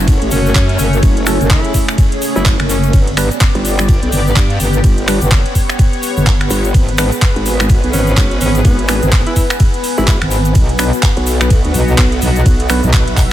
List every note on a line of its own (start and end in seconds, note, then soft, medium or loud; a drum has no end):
0.00 0.20 F#1 loud
0.00 2.90 A3 medium
0.00 3.89 A3 medium
0.00 2.90 C#4 medium
0.00 2.93 C#4 loud
0.00 0.99 F#4 medium
0.00 0.32 B4 medium
0.00 2.89 C#5 loud
0.00 2.93 F#5 medium
0.08 kick loud
0.08 closed hi-hat medium
0.08 ride medium
0.08 shaker soft
0.22 0.30 A1 loud
0.22 closed hi-hat medium
0.31 0.54 F#1 medium
0.31 0.77 C#4 loud
0.31 open hi-hat loud
0.31 shaker loud
0.46 shaker medium
0.55 0.77 F#2 medium
0.55 kick loud
0.55 clap loud
0.55 closed hi-hat medium
0.55 ride medium
0.55 shaker soft
0.69 closed hi-hat medium
0.79 1.01 F#1 loud
0.79 0.94 C#4 medium
0.79 open hi-hat loud
0.79 shaker medium
0.93 closed hi-hat soft
0.93 shaker medium
1.03 1.39 F#1 loud
1.03 2.91 G#4 medium
1.03 kick loud
1.03 closed hi-hat medium
1.03 ride medium
1.03 shaker soft
1.17 closed hi-hat medium
1.26 1.39 F#3 loud
1.26 1.39 A3 medium
1.26 1.39 C#4 medium
1.26 1.39 A4 loud
1.26 finger snap medium
1.26 open hi-hat loud
1.26 shaker loud
1.41 1.62 F#1 loud
1.41 closed hi-hat soft
1.41 shaker medium
1.50 1.88 E4 medium
1.50 kick loud
1.50 clap loud
1.50 closed hi-hat medium
1.50 ride medium
1.50 shaker soft
1.65 closed hi-hat medium
1.74 kick medium
1.74 open hi-hat loud
1.74 shaker loud
1.88 finger snap medium
1.88 closed hi-hat soft
1.88 shaker medium
1.98 kick loud
1.98 closed hi-hat medium
1.98 ride medium
1.98 shaker soft
2.12 closed hi-hat medium
2.22 open hi-hat loud
2.22 shaker medium
2.36 2.58 F#1 loud
2.36 2.47 E4 medium
2.36 shaker medium
2.45 kick loud
2.45 clap loud
2.45 closed hi-hat medium
2.45 ride medium
2.45 shaker soft
2.60 2.92 F#1 loud
2.60 finger snap medium
2.60 closed hi-hat medium
2.69 2.99 C#4 loud
2.69 open hi-hat loud
2.69 shaker loud
2.83 closed hi-hat soft
2.83 shaker medium
2.93 3.29 G1 loud
2.93 13.33 B3 medium
2.93 10.51 B3 medium
2.93 6.71 G4 medium
2.93 4.82 D5 loud
2.93 kick loud
2.93 closed hi-hat medium
2.93 ride medium
2.93 shaker soft
3.07 closed hi-hat medium
3.17 3.29 G3 loud
3.17 3.29 B3 medium
3.17 3.29 D4 medium
3.17 3.29 B4 loud
3.17 13.33 B4 medium
3.17 finger snap medium
3.17 open hi-hat loud
3.17 shaker medium
3.31 closed hi-hat soft
3.31 shaker medium
3.40 6.74 G5 medium
3.40 kick loud
3.40 clap loud
3.40 closed hi-hat medium
3.40 ride medium
3.40 shaker soft
3.55 4.00 G1 loud
3.55 closed hi-hat medium
3.65 open hi-hat loud
3.65 shaker loud
3.79 finger snap medium
3.79 closed hi-hat soft
3.79 shaker medium
3.89 kick loud
3.89 closed hi-hat medium
3.89 ride medium
3.89 shaker soft
4.03 4.11 B1 loud
4.03 closed hi-hat medium
4.12 4.35 G1 loud
4.12 open hi-hat loud
4.12 shaker medium
4.27 shaker medium
4.36 4.58 G2 loud
4.36 kick loud
4.36 clap loud
4.36 closed hi-hat medium
4.36 ride medium
4.36 shaker soft
4.50 closed hi-hat medium
4.60 4.82 G1 loud
4.60 open hi-hat loud
4.60 shaker medium
4.73 closed hi-hat soft
4.73 shaker medium
4.84 5.20 G1 loud
4.84 6.72 C#5 loud
4.84 kick loud
4.84 closed hi-hat medium
4.84 ride medium
4.84 shaker soft
4.98 closed hi-hat medium
5.08 5.20 G3 loud
5.08 5.20 B3 medium
5.08 5.20 D4 medium
5.08 5.20 B4 loud
5.08 finger snap medium
5.08 open hi-hat loud
5.08 shaker medium
5.21 5.43 G1 loud
5.21 closed hi-hat soft
5.21 shaker medium
5.31 kick loud
5.31 clap loud
5.31 closed hi-hat medium
5.31 ride medium
5.31 shaker soft
5.46 closed hi-hat medium
5.55 kick medium
5.55 open hi-hat loud
5.55 shaker medium
5.69 finger snap medium
5.69 closed hi-hat soft
5.69 shaker medium
5.79 kick loud
5.79 closed hi-hat medium
5.79 ride medium
5.79 shaker soft
5.93 closed hi-hat soft
6.03 open hi-hat loud
6.03 shaker medium
6.17 6.49 G1 loud
6.17 shaker medium
6.26 kick loud
6.26 clap loud
6.26 closed hi-hat medium
6.26 ride medium
6.26 shaker soft
6.41 finger snap medium
6.41 closed hi-hat medium
6.50 6.73 G1 loud
6.50 open hi-hat loud
6.50 shaker loud
6.64 closed hi-hat soft
6.64 shaker medium
6.74 7.10 G#1 loud
6.74 10.51 G#4 medium
6.74 12.42 B4 loud
6.74 kick loud
6.74 closed hi-hat medium
6.74 ride medium
6.74 shaker soft
6.89 closed hi-hat medium
6.98 7.10 G#3 loud
6.98 7.10 B3 medium
6.98 7.10 D4 loud
6.98 7.10 B4 loud
6.98 finger snap medium
6.98 open hi-hat loud
6.98 shaker loud
7.12 closed hi-hat soft
7.12 shaker medium
7.22 kick loud
7.22 clap loud
7.22 closed hi-hat medium
7.22 ride medium
7.36 7.81 G#1 loud
7.36 12.09 G#5 medium
7.36 closed hi-hat medium
7.46 open hi-hat loud
7.46 shaker medium
7.60 finger snap medium
7.60 closed hi-hat soft
7.60 shaker medium
7.69 kick loud
7.69 closed hi-hat medium
7.69 ride medium
7.69 shaker soft
7.84 7.92 B1 loud
7.84 closed hi-hat soft
7.93 8.16 G#1 loud
7.93 8.39 C#4 loud
7.93 open hi-hat loud
7.93 shaker medium
8.07 shaker medium
8.17 8.39 G#1 medium
8.17 kick loud
8.17 clap loud
8.17 closed hi-hat medium
8.17 ride medium
8.17 shaker soft
8.31 closed hi-hat medium
8.41 8.63 G#1 loud
8.41 8.56 C#4 loud
8.41 open hi-hat loud
8.41 shaker medium
8.55 closed hi-hat soft
8.55 shaker medium
8.65 9.00 G#1 loud
8.65 8.80 B3 medium
8.65 kick loud
8.65 closed hi-hat medium
8.65 ride medium
8.65 shaker soft
8.79 closed hi-hat medium
8.88 9.00 G#3 loud
8.88 9.01 B3 medium
8.88 9.01 D4 medium
8.88 9.01 B4 loud
8.88 finger snap medium
8.88 open hi-hat loud
8.88 shaker medium
9.02 9.24 G#1 loud
9.02 closed hi-hat soft
9.02 shaker medium
9.12 kick loud
9.12 clap loud
9.12 closed hi-hat medium
9.12 ride medium
9.12 shaker soft
9.27 9.33 E4 medium
9.27 closed hi-hat medium
9.36 9.45 E4 medium
9.36 kick medium
9.36 open hi-hat loud
9.36 shaker medium
9.50 finger snap medium
9.50 closed hi-hat soft
9.50 shaker medium
9.59 kick loud
9.59 closed hi-hat medium
9.59 ride medium
9.59 shaker soft
9.74 closed hi-hat medium
9.84 open hi-hat loud
9.84 shaker medium
9.97 10.19 G#1 loud
9.97 10.04 E4 medium
9.97 shaker soft
10.08 10.17 E4 medium
10.08 kick loud
10.08 clap loud
10.08 closed hi-hat medium
10.08 ride medium
10.08 shaker soft
10.22 10.54 G#1 loud
10.22 finger snap medium
10.22 closed hi-hat medium
10.31 open hi-hat loud
10.31 shaker medium
10.45 closed hi-hat soft
10.45 shaker medium
10.55 10.91 B1 medium
10.55 13.33 B3 medium
10.55 13.33 F#4 medium
10.55 kick loud
10.55 closed hi-hat medium
10.55 ride medium
10.55 shaker soft
10.69 13.33 F#5 medium
10.69 closed hi-hat medium
10.79 10.91 F#3 loud
10.79 10.91 B3 medium
10.79 10.91 D4 medium
10.79 10.91 B4 loud
10.79 finger snap medium
10.79 open hi-hat loud
10.79 shaker medium
10.93 closed hi-hat soft
10.93 shaker medium
11.03 kick loud
11.03 clap loud
11.03 closed hi-hat medium
11.03 ride medium
11.03 shaker soft
11.17 11.62 B1 loud
11.17 closed hi-hat medium
11.27 open hi-hat loud
11.27 shaker medium
11.41 finger snap medium
11.41 shaker soft
11.50 kick loud
11.50 closed hi-hat medium
11.50 ride medium
11.50 shaker soft
11.65 11.73 D2 loud
11.65 closed hi-hat medium
11.74 11.97 B1 loud
11.74 open hi-hat loud
11.74 shaker medium
11.88 shaker soft
11.98 12.20 B1 loud
11.98 kick loud
11.98 clap loud
11.98 closed hi-hat medium
11.98 ride medium
11.98 shaker soft
12.12 closed hi-hat medium
12.22 12.44 B1 loud
12.22 open hi-hat loud
12.22 shaker medium
12.36 closed hi-hat soft
12.36 shaker soft
12.46 12.81 B1 loud
12.46 13.33 E5 loud
12.46 kick loud
12.46 closed hi-hat medium
12.46 ride medium
12.46 shaker soft
12.60 closed hi-hat medium
12.69 12.81 F#3 loud
12.69 12.81 B3 medium
12.69 12.81 D4 medium
12.69 12.81 B4 loud
12.69 finger snap medium
12.69 open hi-hat loud
12.69 shaker medium
12.83 13.05 B1 loud
12.83 closed hi-hat soft
12.83 shaker soft
12.93 kick loud
12.93 clap loud
12.93 closed hi-hat medium
12.93 ride medium
12.93 shaker soft
13.08 13.33 B1 loud
13.08 closed hi-hat medium
13.17 kick medium
13.17 clap medium
13.17 open hi-hat loud
13.17 shaker medium